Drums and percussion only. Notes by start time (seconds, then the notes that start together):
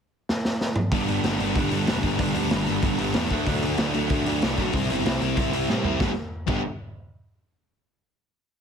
0.29 snare
0.45 snare
0.61 snare
0.76 mid tom
0.92 kick, open hi-hat
1.08 open hi-hat
1.24 snare, open hi-hat
1.40 open hi-hat
1.56 kick, open hi-hat
1.72 open hi-hat
1.87 snare, open hi-hat
2.03 kick, open hi-hat
2.19 kick, open hi-hat
2.35 open hi-hat
2.50 snare, open hi-hat
2.67 open hi-hat
2.83 kick, open hi-hat
2.99 open hi-hat
3.14 snare, open hi-hat
3.31 kick, open hi-hat
3.46 kick, open hi-hat
3.63 open hi-hat
3.78 snare, open hi-hat
3.94 open hi-hat
4.10 kick, open hi-hat
4.26 open hi-hat
4.42 snare, open hi-hat
4.58 kick, open hi-hat
4.73 kick, open hi-hat
4.90 open hi-hat
5.06 snare, open hi-hat
5.22 open hi-hat
5.37 kick, open hi-hat
5.53 open hi-hat
5.70 snare
5.84 floor tom
6.00 kick, snare
6.48 kick, crash